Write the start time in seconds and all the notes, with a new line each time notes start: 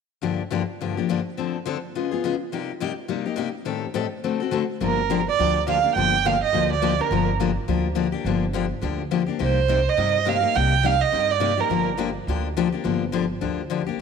0.22 G2 D3 F3 A#3 D4 G4
0.51 G2 D3 F3 A#3 D4 G4
0.81 G2 D3 F3 A#3 D4 G4
0.97 F3 A#3 D4 G4
1.09 G2 D3 F3 A#3 D4 G4
1.37 D3 F3 C4 D4 A4
1.65 D3 F3 C4 D4 A4
1.95 C#3 G#3 B3 F4 G#4
2.11 B3 F4 G#4
2.24 C#3 G#3 B3 F4 G#4
2.52 C3 G3 A#3 D#4 G4
2.80 C3 G3 A#3 D#4 G4
3.08 C3 G3 A#3 D#4 G4
3.25 A#3 D#4 G4
3.36 C3 G3 A#3 D#4 G4
3.65 A2 D#3 G3 C4 G4 A4
3.94 A2 D#3 G3 C4 G4 A4
4.24 D3 A3 C4 F#4 A4
4.40 C4 F#4 A4
4.51 D3 A3 C4 F#4 A4
4.80 G1 D3 F3 A#3 D4 G4
4.85 A#4
5.10 D3 F3 A#3 D4 G4
5.28 D5
5.39 D2 D3 F3 A#3 D4 G4
5.67 D3 F3 A#3 D4 G4 F5
5.83 A#3 D4 G4
5.96 G1 D3 F3 A#3 D4 G4 G5
6.25 D3 F3 A#3 D4 G4 F5
6.44 D#5
6.53 D2 D3 F3 A#3 D4 G4
6.72 D5
6.82 D3 F3 A#3 D4 G4
6.99 A#3 D4 G4 A#4
7.11 G1 D3 F3 A#3 D4 G4
7.40 D3 F3 A#3 D4 G4
7.68 D2 D3 F3 A#3 D4 G4
7.95 D3 F3 A#3 D4 G4
8.12 A#3 D4 G4
8.24 G1 D3 F3 A#3 D4 G4
8.53 D3 F3 A#3 D4 G4
8.81 D2 D3 F3 A#3 D4 G4
9.11 D3 F3 A#3 D4 G4
9.26 A#3 D4 G4
9.39 C2 C3 G3 A#3 D#4 G4
9.44 C5
9.68 C3 G3 A#3 D#4 G4
9.89 D#5
9.97 G2 C3 G3 A#3 D#4 G4
10.25 C3 G3 A#3 D#4 G4 F5
10.40 A#3 D#4 G4
10.55 C2 C3 G3 A#3 D#4 G4 G5
10.83 C3 G3 A#3 D#4 G4 F5
11.01 D#5
11.12 G2 C3 G3 A#3 D#4 G4
11.31 D5
11.40 C3 G3 A#3 D#4 G4
11.57 A#3 D#4 G4 A#4
11.70 G1 D3 F3 A#3 D4 G4
11.97 D3 F3 A#3 D4 G4
12.27 D2 D3 F3 A#3 D4 G4
12.57 D3 F3 A#3 D4 G4
12.72 A#3 D4 G4
12.84 G1 D3 F3 A#3 D4 G4
13.12 D3 F3 A#3 D4 G4
13.41 D2 D3 F3 A#3 D4 G4
13.70 D3 F3 A#3 D4 G4
13.86 A#3 D4 G4